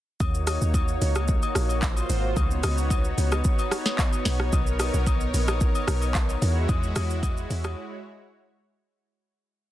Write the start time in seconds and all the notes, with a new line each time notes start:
0.20 D#2 A#3 D#4 F#4 C#5, kick, high agogo, shaker
0.34 shaker
0.47 cross-stick, open hi-hat, high agogo, shaker
0.61 D#2, shaker
0.74 kick, high agogo, shaker
0.88 shaker
1.01 C#2, open hi-hat, shaker
1.15 cross-stick, high agogo, shaker
1.28 kick, shaker
1.42 high agogo, shaker
1.55 A#1, cross-stick, open hi-hat, shaker
1.69 high agogo, shaker
1.82 F4 C5, kick, clap, low woodblock, shaker
1.97 high agogo, shaker
2.10 G#1, open hi-hat, shaker
2.36 C#2 B3 D#4 C#5, kick, high agogo, shaker
2.51 shaker
2.63 C#2, cross-stick, open hi-hat, high agogo, shaker
2.78 shaker
2.90 kick, high agogo, shaker
3.04 shaker
3.18 C#2, open hi-hat, shaker
3.32 cross-stick, high agogo, shaker
3.44 kick, shaker
3.59 high agogo, shaker
3.71 cross-stick, open hi-hat, shaker
3.86 snare, high agogo, shaker
3.99 kick, clap, low woodblock, shaker
4.13 high agogo, shaker
4.25 B1, snare, open hi-hat, shaker
4.40 cross-stick
4.53 B1 A#4, kick, high agogo, shaker
4.67 shaker
4.79 cross-stick, open hi-hat, high agogo, shaker
4.94 B1, shaker
5.07 kick, high agogo, shaker
5.20 shaker
5.34 A#1, open hi-hat, shaker
5.48 cross-stick, high agogo, shaker
5.61 kick, shaker
5.75 high agogo, shaker
5.88 B1, cross-stick, open hi-hat, shaker
6.02 high agogo, shaker
6.15 kick, clap, low woodblock, shaker
6.29 high agogo, shaker
6.42 E2 G#3 E4 F#4, open hi-hat, shaker
6.69 E2, kick, high agogo, shaker
6.83 shaker
6.96 E2, cross-stick, open hi-hat, high agogo, shaker
7.10 shaker
7.23 kick, high agogo, shaker
7.37 shaker
7.50 E2, open hi-hat, shaker
7.64 cross-stick, high agogo, shaker